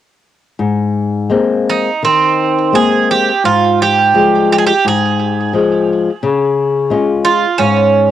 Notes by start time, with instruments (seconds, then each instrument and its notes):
0.59 nylon-string guitar G#2
1.30 nylon-string guitar G#3 A#3 C4
1.70 bouzouki D#4
2.03 nylon-string guitar D#3, bouzouki C4
2.72 nylon-string guitar G#3 A#3 C4, bouzouki G#4
3.11 bouzouki G4
3.44 nylon-string guitar G#2, bouzouki F4
3.82 bouzouki G4
4.14 nylon-string guitar F3 G3 G#3
4.52 bouzouki G4
4.58 bouzouki G#4
4.67 bouzouki G4
4.85 nylon-string guitar G#2, bouzouki G#4
5.53 nylon-string guitar F3 G#3
6.23 nylon-string guitar C#3
6.90 nylon-string guitar G#3 C#4 F4
7.25 bouzouki F4
7.58 nylon-string guitar G#2, bouzouki C#4